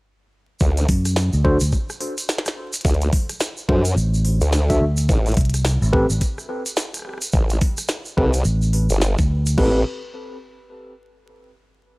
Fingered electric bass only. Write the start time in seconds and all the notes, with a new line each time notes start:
0.89 F#2
1.33 D2
1.61 D2
3.96 A1
4.81 D2
5.37 C2
5.82 A1
6.10 A1
8.45 A1
9.19 D2